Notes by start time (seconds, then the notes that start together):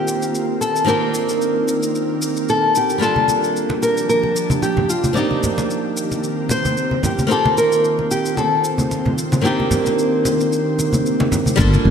Already playing: D#3 A#3 C4 D#4 F4 G4 A#4
0.08 shaker
0.22 shaker
0.35 shaker
0.61 A4, shaker
0.76 shaker
0.84 D#3 A#3 C4 D4 G4 A#4, shaker
0.89 D#4 G4
1.14 shaker
1.29 shaker
1.42 shaker
1.68 shaker
1.83 shaker
1.95 shaker
2.22 shaker
2.37 shaker
2.49 A4, shaker
2.75 G4, shaker
2.90 shaker
2.98 F3 G3 A#3 D4 F4 A5
3.02 A4 A5, shaker
3.16 high conga
3.28 muted conga, shaker
3.44 shaker
3.56 shaker
3.70 muted conga
3.83 A#4, shaker
3.97 shaker
4.09 A#4, shaker
4.23 muted conga
4.36 shaker
4.50 high conga, shaker
4.62 G4, muted conga, shaker
4.77 high conga, low conga
4.90 F4, shaker
5.04 high conga, shaker
5.13 D#3 A#3 C4 D#4 A#4 D5, muted conga, shaker
5.18 G4
5.31 high conga
5.43 low conga, shaker
5.58 muted conga, shaker
5.71 shaker
5.97 shaker
6.12 muted conga, shaker
6.24 shaker
6.49 C5, muted conga, shaker
6.65 high conga, shaker
6.77 shaker
6.91 high conga
7.03 G4, muted conga, low conga, shaker
7.19 high conga, shaker
7.27 A#3 C4 D#4 F4 C5
7.31 F4 G4 A4, shaker
7.45 muted conga, high conga
7.58 A#4, shaker
7.72 shaker
7.84 shaker
7.99 muted conga
8.11 G4, shaker
8.26 shaker
8.37 A4, muted conga, shaker
8.64 shaker
8.78 high conga, shaker
8.91 muted conga, shaker
9.05 high conga, low conga
9.18 shaker
9.32 muted conga, high conga, shaker
9.41 D#3 A#3 C4 D4 D#4 G4, shaker
9.47 G4
9.60 high conga
9.71 low conga, shaker
9.86 muted conga, shaker
9.99 shaker
10.25 muted conga, shaker
10.40 shaker
10.53 shaker
10.79 muted conga, shaker
10.93 high conga, shaker
11.06 shaker
11.20 muted conga, high conga
11.32 low conga, shaker
11.46 high conga, shaker
11.56 G1 G3 A#3 D4 F4, kick, shaker
11.61 A4
11.73 high conga, shaker
11.85 G1, muted conga